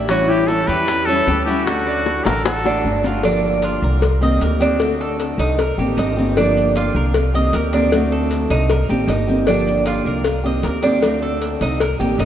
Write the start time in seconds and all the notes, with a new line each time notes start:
Already playing: A1
0.08 E3 G3 C#4 E4 F#4, high bongo, maracas
0.28 E4 G4, high bongo, maracas
0.47 E4 A4, high bongo, maracas
0.67 E2 G4 B4, maracas
0.88 muted steel-string acoustic guitar stroke, high bongo, maracas
1.06 G3 C#4 E4 A4 C#5, high bongo, maracas
1.27 D2 E3 G3 C#4 E4 G4, high bongo, low bongo, maracas
1.45 C#4 E4 F#4 G4, high bongo, maracas
1.49 G3
1.65 D3 A3 D4 F#4, high bongo, maracas
1.69 D4 F#4
1.87 D5, high bongo, maracas
2.06 high bongo, maracas
2.25 A1 G4 A4 A#4, high bongo, maracas
2.45 F#4 A4, muted steel-string acoustic guitar stroke, high bongo, maracas
2.64 A3 D4 F#4, high bongo, maracas
2.84 G1 D3 A3 D4 F#4, maracas
3.04 A3 D4 F4 F#4, low bongo, maracas
3.23 D3 F3 A#3 D4 G4, cowbell, maracas
3.62 F4, cowbell, maracas
3.82 C2 A#4, maracas
4.01 muted steel-string acoustic guitar stroke, cowbell, maracas
4.21 D#3 A#3 C4 G4 D#5, maracas
4.41 D2 D#3 A#3 C4 G4 A#4, cowbell, maracas
4.60 D#3 A#3 C4 D4 G4, cowbell, maracas
4.79 D3 A3 C4 F#4, cowbell, maracas
5.01 A4
5.20 cowbell, maracas
5.38 C2 D#4, cowbell, maracas
5.58 A#4, muted steel-string acoustic guitar stroke, cowbell, maracas
5.78 A1 D#3 A#3 C4 G4
5.97 G1 D#3 A#3 C4 D#4 G4, cowbell, maracas
6.17 D#3 A#3 C4 G4, maracas
6.36 D3 F3 A#3 D4 G4, cowbell, maracas
6.57 maracas
6.76 F4, cowbell, maracas
6.95 C2 A#4, maracas
7.14 muted steel-string acoustic guitar stroke, cowbell, maracas
7.34 D#3 A#3 C4 G4 D#5, maracas
7.53 D2 D#3 A#3 C4 G4 A#4, cowbell, maracas
7.72 D#3 A#3 C4 D4 G4, cowbell, maracas
7.92 D3 A3 C4 F#4, cowbell, maracas
8.12 A4
8.31 cowbell, maracas
8.50 C2 D#4, cowbell, maracas
8.70 A#4, muted steel-string acoustic guitar stroke, cowbell, maracas
8.89 A1 D#3 A#3 C4 G4, maracas
9.08 G1 D#3 A#3 C4 D#4 G4, cowbell, maracas
9.27 D#3 A#3 C4 G4, maracas
9.46 D3 F3 A#3 D4 G4, cowbell, maracas
9.67 maracas
9.86 F4, cowbell, maracas
10.05 C2 A#4, maracas
10.24 muted steel-string acoustic guitar stroke, cowbell, maracas
10.44 D#3 A#3 C4 G4 D#5
10.63 D2 D#3 A#3 C4 G4 A#4, cowbell, maracas
10.83 D#3 A#3 C4 D4 G4, cowbell, maracas
11.02 D3 A3 C4 F#4, cowbell, maracas
11.22 A4
11.42 cowbell, maracas
11.61 C2 D#4, cowbell, maracas
11.80 A#4, muted steel-string acoustic guitar stroke, cowbell, maracas
11.99 A1 D#3 A#3 C4 G4, maracas
12.18 G1 D#3 A#3 C4 D#4 G4, cowbell, maracas